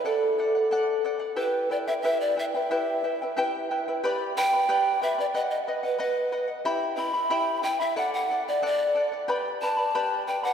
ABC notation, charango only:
X:1
M:2/4
L:1/16
Q:1/4=91
K:Em
V:1 name="Charango"
[Adf]2 [Adf] [df] [Adf]2 [Adf] [df] | [EGBeg]2 [EBeg] [EBg] [EGBeg]2 [EBeg] [EBg] | [EGBeg]2 [EBeg] [EBg] [EGBeg]2 [EBeg] [EBg] | [GBdgb]2 [Bdgb] [Bdb] [GBdgb]2 [Bdgb] [Bdb] |
[B^df]2 [Bdf] [df] [Bdf]2 [Bdf] [df] | [EGegb]2 [Eegb] [Eeb] [EGegb]2 [Eegb] [Eeb] | [Adf]2 [Adf] [df] [Adf]2 [Adf] [df] | [GBdgb]2 [Bdgb] [Bdb] [GBdgb]2 [Bdgb] [Bdb] |]